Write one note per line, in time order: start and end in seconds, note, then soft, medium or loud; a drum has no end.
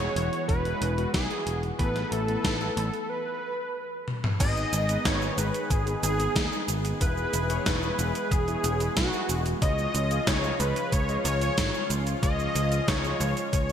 0.00 1.77 E3 medium
0.00 0.12 G#3 loud
0.00 1.75 G#3 medium
0.00 3.06 B3 medium
0.00 0.12 E4 medium
0.00 1.77 F#4 medium
0.00 0.12 G#4 loud
0.00 0.45 C#5 loud
0.00 closed hi-hat soft
0.16 0.28 E1 loud
0.16 0.29 G#3 medium
0.16 0.29 E4 medium
0.16 0.29 F#4 medium
0.16 closed hi-hat medium
0.33 closed hi-hat soft
0.48 0.72 E1 medium
0.48 1.10 B4 loud
0.48 kick loud
0.48 closed hi-hat medium
0.65 0.94 G#3 medium
0.65 0.94 E4 medium
0.65 0.94 G#4 medium
0.65 closed hi-hat soft
0.81 1.05 E1 loud
0.81 closed hi-hat medium
0.98 1.10 G#3 medium
0.98 1.10 E4 medium
0.98 1.10 F#4 loud
0.98 closed hi-hat soft
1.13 1.26 B1 loud
1.13 1.59 G#4 loud
1.13 kick loud
1.13 snare loud
1.13 closed hi-hat medium
1.30 1.43 G#3 medium
1.30 1.43 E4 medium
1.30 1.43 F#4 medium
1.30 closed hi-hat soft
1.47 1.70 E1 medium
1.47 closed hi-hat medium
1.63 closed hi-hat soft
1.79 2.03 A1 loud
1.79 3.09 E3 medium
1.79 3.09 A3 medium
1.79 2.24 B3 medium
1.79 2.24 E4 medium
1.79 2.24 A4 medium
1.79 3.09 A4 medium
1.79 2.13 B4 loud
1.79 kick loud
1.79 closed hi-hat medium
1.96 snare soft
1.96 closed hi-hat soft
2.11 2.35 A1 medium
2.11 3.11 A4 loud
2.11 closed hi-hat medium
2.28 2.73 B3 loud
2.28 2.73 E4 medium
2.28 2.73 B4 loud
2.28 closed hi-hat soft
2.44 2.68 A1 medium
2.44 kick loud
2.44 snare loud
2.44 closed hi-hat medium
2.61 closed hi-hat soft
2.77 2.89 A1 loud
2.77 2.90 B3 medium
2.77 2.90 E4 medium
2.77 2.90 A4 medium
2.77 closed hi-hat medium
2.94 closed hi-hat soft
3.09 4.07 B4 medium
4.08 high tom medium
4.24 mid tom medium
4.40 4.64 G#1 loud
4.40 6.98 D#3 medium
4.40 13.72 G#3 medium
4.40 9.58 B3 medium
4.40 4.85 B3 medium
4.40 4.85 D#4 medium
4.40 9.58 G#4 medium
4.40 4.85 G#4 loud
4.40 5.07 D#5 loud
4.40 kick loud
4.40 closed hi-hat medium
4.40 crash loud
4.40 cabasa soft
4.57 cabasa soft
4.73 4.96 G#1 medium
4.73 closed hi-hat medium
4.73 cabasa medium
4.89 5.34 B3 loud
4.89 5.34 D#4 medium
4.89 5.34 B4 loud
4.89 closed hi-hat medium
4.89 cabasa soft
5.05 5.29 G#1 medium
5.05 5.39 C#5 loud
5.05 kick loud
5.05 snare loud
5.05 closed hi-hat medium
5.05 cabasa soft
5.22 cabasa soft
5.38 5.50 G#1 loud
5.38 5.50 B3 medium
5.38 5.50 D#4 medium
5.38 5.50 G#4 medium
5.38 5.72 B4 medium
5.38 closed hi-hat medium
5.38 cabasa medium
5.54 closed hi-hat medium
5.54 cabasa soft
5.70 5.94 G#1 medium
5.70 6.03 G#4 medium
5.70 kick loud
5.70 closed hi-hat medium
5.70 cabasa soft
5.87 6.16 B3 medium
5.87 6.16 D#4 medium
5.87 6.16 B4 medium
5.87 closed hi-hat soft
5.87 cabasa soft
6.03 6.27 G#1 loud
6.03 6.64 G#4 medium
6.03 closed hi-hat medium
6.03 cabasa medium
6.19 6.32 B3 loud
6.19 6.32 D#4 medium
6.19 6.32 G#4 loud
6.19 closed hi-hat medium
6.19 cabasa soft
6.36 6.48 D#2 loud
6.36 kick loud
6.36 snare loud
6.36 closed hi-hat medium
6.36 cabasa soft
6.52 6.65 B3 medium
6.52 6.65 D#4 medium
6.52 6.65 G#4 medium
6.52 cabasa soft
6.68 6.92 G#1 medium
6.68 closed hi-hat medium
6.68 cabasa medium
6.85 closed hi-hat medium
6.85 cabasa soft
7.01 7.25 E1 loud
7.01 9.59 E3 medium
7.01 7.46 E4 medium
7.01 7.46 G#4 medium
7.01 7.46 B4 medium
7.01 7.62 B4 loud
7.01 kick loud
7.01 closed hi-hat medium
7.01 cabasa soft
7.17 cabasa soft
7.33 7.57 E1 medium
7.33 closed hi-hat medium
7.33 cabasa medium
7.50 7.95 E4 loud
7.50 7.95 G#4 medium
7.50 7.95 C#5 loud
7.50 closed hi-hat medium
7.50 cabasa soft
7.66 7.90 E1 medium
7.66 8.33 B4 loud
7.66 kick loud
7.66 snare loud
7.66 closed hi-hat medium
7.66 cabasa soft
7.83 cabasa soft
7.99 8.11 E1 loud
7.99 8.11 E4 medium
7.99 8.11 G#4 medium
7.99 8.11 B4 medium
7.99 closed hi-hat medium
7.99 cabasa medium
8.15 closed hi-hat medium
8.15 cabasa soft
8.31 8.55 E1 medium
8.31 8.96 G#4 loud
8.31 kick loud
8.31 closed hi-hat medium
8.31 cabasa soft
8.48 8.76 E4 medium
8.48 8.76 G#4 medium
8.48 8.76 C#5 medium
8.48 closed hi-hat soft
8.48 cabasa soft
8.64 8.88 E1 loud
8.64 closed hi-hat medium
8.64 cabasa medium
8.80 8.93 E4 loud
8.80 8.93 G#4 medium
8.80 8.93 B4 loud
8.80 closed hi-hat medium
8.80 cabasa soft
8.97 9.08 B1 loud
8.97 9.42 F#4 loud
8.97 kick loud
8.97 snare loud
8.97 closed hi-hat medium
8.97 cabasa soft
9.13 9.26 E4 medium
9.13 9.26 G#4 medium
9.13 9.26 B4 medium
9.13 cabasa soft
9.29 9.53 E1 medium
9.29 closed hi-hat medium
9.29 cabasa medium
9.46 closed hi-hat medium
9.46 cabasa soft
9.62 9.86 C#2 loud
9.62 13.72 C#3 medium
9.62 13.72 F3 medium
9.62 13.72 F4 medium
9.62 10.07 F4 medium
9.62 10.07 G#4 medium
9.62 10.07 C#5 loud
9.62 10.29 D#5 loud
9.62 kick loud
9.62 closed hi-hat medium
9.62 cabasa soft
9.78 cabasa soft
9.95 10.18 C#2 medium
9.95 closed hi-hat medium
9.95 cabasa medium
10.11 10.56 F4 loud
10.11 10.56 G#4 medium
10.11 10.56 D#5 loud
10.11 closed hi-hat medium
10.11 cabasa soft
10.27 10.51 C#2 loud
10.27 10.59 C#5 loud
10.27 kick loud
10.27 snare loud
10.27 closed hi-hat medium
10.27 cabasa soft
10.44 cabasa soft
10.60 10.72 C#2 loud
10.60 10.72 F4 medium
10.60 10.72 G#4 medium
10.60 10.94 B4 loud
10.60 10.72 C#5 medium
10.60 closed hi-hat medium
10.60 cabasa medium
10.76 closed hi-hat medium
10.76 cabasa soft
10.92 11.16 C#2 medium
10.92 11.25 C#5 loud
10.92 kick loud
10.92 closed hi-hat medium
10.92 cabasa soft
11.09 11.37 F4 medium
11.09 11.37 G#4 medium
11.09 11.37 D#5 medium
11.09 closed hi-hat soft
11.09 cabasa soft
11.25 11.49 C#2 loud
11.25 11.86 C#5 medium
11.25 closed hi-hat medium
11.25 cabasa medium
11.41 11.54 F4 loud
11.41 11.54 G#4 medium
11.41 11.54 C#5 loud
11.41 closed hi-hat medium
11.41 cabasa soft
11.58 11.69 G#1 loud
11.58 kick loud
11.58 snare loud
11.58 closed hi-hat medium
11.58 cabasa soft
11.74 11.86 F4 medium
11.74 11.86 G#4 medium
11.74 11.86 C#5 medium
11.74 cabasa soft
11.90 12.14 C#2 medium
11.90 closed hi-hat medium
11.90 cabasa medium
12.07 closed hi-hat medium
12.07 cabasa soft
12.23 12.46 C#2 loud
12.23 12.68 F4 medium
12.23 12.68 G#4 medium
12.23 12.68 C#5 medium
12.23 12.89 D#5 loud
12.23 kick loud
12.23 closed hi-hat medium
12.23 cabasa soft
12.39 cabasa soft
12.55 12.79 C#2 medium
12.55 closed hi-hat medium
12.55 cabasa medium
12.72 13.17 F4 loud
12.72 13.17 G#4 medium
12.72 13.17 D#5 loud
12.72 closed hi-hat medium
12.72 cabasa soft
12.88 13.12 C#2 medium
12.88 13.52 C#5 loud
12.88 kick loud
12.88 snare loud
12.88 closed hi-hat medium
12.88 cabasa soft
13.05 closed hi-hat soft
13.05 cabasa soft
13.20 13.32 C#2 loud
13.20 13.33 F4 medium
13.20 13.33 G#4 medium
13.20 13.33 C#5 medium
13.20 closed hi-hat medium
13.20 cabasa medium
13.37 closed hi-hat medium
13.37 cabasa soft
13.53 13.72 C#2 medium
13.53 13.72 C#5 loud
13.53 kick loud
13.53 closed hi-hat medium
13.53 cabasa soft